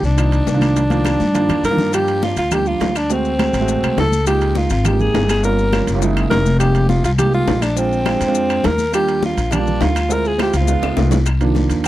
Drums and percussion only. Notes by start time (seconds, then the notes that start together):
0.03 short guiro, maracas
0.18 high bongo, high conga, high timbale, long guiro, claves, maracas
0.32 high conga, high timbale, maracas
0.47 high bongo, low bongo, high conga, short guiro, maracas
0.61 high conga, high timbale, short guiro, claves, maracas
0.76 high bongo, high conga, high timbale, long guiro, maracas
0.90 high bongo, high conga, high timbale, maracas
1.05 high bongo, high conga, high timbale, short guiro, claves, maracas
1.20 high bongo, high conga, short guiro, maracas
1.35 high bongo, low conga, high timbale, long guiro, maracas
1.49 high bongo, low conga, high timbale, claves, maracas
1.64 high timbale, low timbale, short guiro, maracas
1.77 low bongo, low conga, short guiro, maracas
1.93 high bongo, high conga, high timbale, long guiro, claves, maracas
2.08 high conga, high timbale, maracas
2.22 high bongo, high conga, low timbale, short guiro, maracas
2.37 high bongo, high conga, high timbale, short guiro, maracas
2.51 high bongo, high conga, low conga, high timbale, long guiro, claves, maracas
2.66 high conga, maracas
2.81 high bongo, low bongo, high conga, high timbale, low timbale, short guiro, maracas
2.96 high bongo, high timbale, short guiro, claves, maracas
3.10 high bongo, long guiro, maracas
3.25 high conga, maracas
3.39 high bongo, high conga, high timbale, low timbale, short guiro, claves, maracas
3.54 high bongo, high timbale, short guiro, maracas
3.68 high bongo, maracas
3.83 high bongo, high conga, high timbale, claves, maracas
3.98 high bongo, low bongo, high conga, high timbale, low timbale, short guiro, maracas
4.12 high conga, short guiro, maracas
4.26 high bongo, high conga, high timbale, long guiro, claves, maracas
4.41 high bongo, high conga, high timbale, maracas
4.55 high bongo, high conga, low timbale, short guiro, maracas
4.70 high conga, high timbale, short guiro, maracas
4.85 high bongo, high conga, low conga, high timbale, long guiro, claves, maracas
4.99 high conga, low conga, maracas
5.14 high bongo, low bongo, high conga, high timbale, low timbale, short guiro, maracas
5.29 high bongo, high conga, high timbale, short guiro, claves, maracas
5.44 high bongo, long guiro, maracas
5.58 high conga, maracas
5.73 high bongo, high conga, high timbale, low timbale, short guiro, claves, maracas
5.87 high conga, high timbale, short guiro, maracas
6.02 high bongo, long guiro, maracas
6.17 high bongo, high timbale, claves, maracas
6.31 high bongo, low bongo, high conga, high timbale, low timbale, short guiro, maracas
6.46 high bongo, high conga, short guiro, maracas
6.60 high bongo, high timbale, long guiro, claves, maracas
6.75 high conga, high timbale, maracas
6.89 high bongo, high conga, low timbale, short guiro, maracas
7.04 high bongo, high conga, high timbale, short guiro, maracas
7.18 high bongo, high conga, low conga, high timbale, long guiro, claves, maracas
7.33 high conga, maracas
7.48 high bongo, low bongo, high conga, high timbale, low timbale, short guiro, maracas
7.62 high bongo, high conga, high timbale, short guiro, claves, maracas
7.77 high bongo, long guiro, maracas
7.92 high conga, maracas
8.06 high bongo, high conga, high timbale, low timbale, short guiro, claves, maracas
8.21 high bongo, high conga, high timbale, short guiro, maracas
8.35 high bongo, high conga, long guiro, maracas
8.49 high bongo, high conga, high timbale, claves, maracas
8.64 high bongo, low bongo, high conga, high timbale, low timbale, short guiro, maracas
8.78 high bongo, high conga, short guiro, maracas
8.93 high bongo, high conga, high timbale, claves, maracas
9.08 high conga, high timbale, maracas
9.23 high bongo, high conga, low timbale, short guiro, maracas
9.37 high bongo, high conga, high timbale, short guiro, maracas
9.51 high bongo, high conga, low conga, high timbale, claves, maracas
9.67 high conga, low conga, maracas
9.81 high bongo, low bongo, high conga, high timbale, low timbale, short guiro, maracas
9.95 high bongo, high timbale, short guiro, claves, maracas
10.10 high bongo, high conga, long guiro, maracas
10.25 high conga, maracas
10.39 high bongo, high conga, high timbale, low timbale, short guiro, claves, maracas
10.54 high conga, high timbale, short guiro, maracas
10.68 high bongo, high conga, long guiro, maracas
10.82 high bongo, high conga, high timbale, claves, maracas
10.97 low bongo, high conga, high timbale, short guiro, maracas
11.11 low bongo, high conga, low timbale, short guiro, maracas
11.26 high bongo, high timbale, long guiro, claves, maracas
11.40 high bongo, high conga, high timbale, maracas
11.55 high bongo, high conga, low timbale, short guiro, maracas
11.70 high bongo, high conga, high timbale, short guiro, maracas
11.84 high bongo, high timbale, long guiro